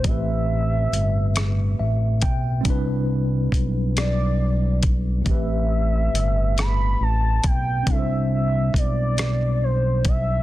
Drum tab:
HH |x-xx-x|x-xx-x|x-xx-x|x-xx-x|
SD |---r--|---r--|---r--|---r--|
BD |o----o|o-o--o|o----o|o-o--o|